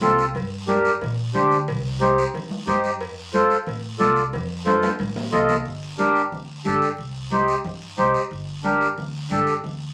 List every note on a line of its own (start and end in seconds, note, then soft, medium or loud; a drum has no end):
0.01 0.36 C2 medium
0.01 0.25 C4 medium
0.01 0.25 F4 medium
0.01 0.25 A4 medium
0.01 cowbell medium
0.01 high conga medium
0.01 low conga medium
0.01 low timbale medium
0.01 short guiro medium
0.18 short guiro medium
0.35 0.88 G2 loud
0.35 cowbell loud
0.35 long guiro medium
0.68 0.91 D4 medium
0.68 0.91 G4 medium
0.68 0.92 A#4 medium
0.68 cowbell medium
0.68 high conga medium
0.68 short guiro medium
0.85 short guiro medium
1.01 1.28 A#2 loud
1.01 cowbell medium
1.01 low conga medium
1.01 long guiro medium
1.34 1.69 D2 loud
1.34 1.57 D4 medium
1.34 1.58 G4 medium
1.34 1.58 C5 loud
1.34 cowbell medium
1.34 high conga medium
1.34 short guiro medium
1.51 short guiro medium
1.68 2.21 C2 loud
1.68 cowbell loud
1.68 long guiro medium
2.00 2.24 D#4 medium
2.00 2.24 G4 medium
2.00 2.24 C5 loud
2.00 cowbell medium
2.00 high conga medium
2.00 short guiro medium
2.18 short guiro medium
2.34 2.61 D#2 medium
2.34 cowbell medium
2.34 low conga medium
2.34 long guiro medium
2.50 high conga medium
2.67 3.00 G2 loud
2.67 2.90 D#4 medium
2.67 2.91 G4 medium
2.67 2.91 C5 medium
2.67 cowbell medium
2.67 high conga medium
2.67 short guiro medium
2.84 short guiro medium
3.00 3.53 F2 loud
3.00 cowbell loud
3.00 long guiro medium
3.33 3.57 F4 medium
3.33 3.57 A4 medium
3.33 3.57 C5 loud
3.33 cowbell medium
3.33 high conga medium
3.33 short guiro medium
3.50 short guiro medium
3.66 3.93 A2 loud
3.66 cowbell medium
3.66 low conga medium
3.66 long guiro medium
3.99 4.34 C2 loud
3.99 4.23 F4 medium
3.99 4.23 A4 medium
3.99 4.23 D5 loud
3.99 cowbell medium
3.99 high conga medium
3.99 low timbale medium
3.99 short guiro medium
4.16 short guiro medium
4.33 4.86 F2 loud
4.33 cowbell loud
4.33 low conga medium
4.33 long guiro medium
4.65 4.89 F4 medium
4.65 4.89 A4 medium
4.65 4.89 C5 loud
4.65 cowbell medium
4.65 high conga medium
4.65 high timbale medium
4.65 short guiro medium
4.83 high conga loud
4.83 high timbale medium
4.83 short guiro medium
4.99 5.26 A2 loud
4.99 cowbell medium
4.99 high conga medium
4.99 long guiro medium
5.16 low conga medium
5.16 low timbale medium
5.32 5.59 C2 loud
5.32 5.55 F4 medium
5.32 5.56 A4 medium
5.32 5.56 D#5 medium
5.32 cowbell medium
5.32 low conga medium
5.32 low timbale medium
5.32 short guiro medium
5.49 low conga medium
5.49 low timbale medium
5.49 short guiro medium
5.65 6.19 G1 medium
5.65 long guiro medium
5.98 6.22 D4 medium
5.98 6.22 G4 medium
5.98 6.22 A#4 medium
5.98 high conga medium
5.98 short guiro medium
6.15 short guiro medium
6.32 6.58 D2 medium
6.32 low conga medium
6.32 long guiro medium
6.65 6.78 G1 medium
6.65 6.88 D4 medium
6.65 6.89 G4 medium
6.65 6.89 A4 medium
6.65 high conga medium
6.65 short guiro medium
6.82 short guiro medium
6.98 7.51 C2 medium
6.98 long guiro medium
7.31 7.55 D#4 medium
7.31 7.55 G4 medium
7.31 7.55 C5 medium
7.31 high conga medium
7.31 short guiro medium
7.48 short guiro medium
7.64 7.91 G2 medium
7.64 low conga medium
7.64 long guiro medium
7.98 8.11 C2 loud
7.98 8.21 D#4 medium
7.98 8.21 G4 medium
7.98 8.21 C5 medium
7.98 high conga medium
7.98 short guiro medium
8.14 short guiro medium
8.31 8.84 G1 loud
8.31 long guiro medium
8.64 8.87 D4 medium
8.64 8.87 G4 medium
8.64 8.87 A#4 medium
8.64 high conga medium
8.64 short guiro medium
8.81 short guiro medium
8.98 9.24 D2 medium
8.98 low conga medium
8.98 long guiro medium
9.30 9.44 G1 medium
9.30 9.53 D4 medium
9.30 9.54 G4 medium
9.30 9.54 A4 medium
9.30 high conga medium
9.30 short guiro medium
9.47 short guiro medium
9.64 9.94 D2 medium
9.64 low conga medium
9.64 long guiro medium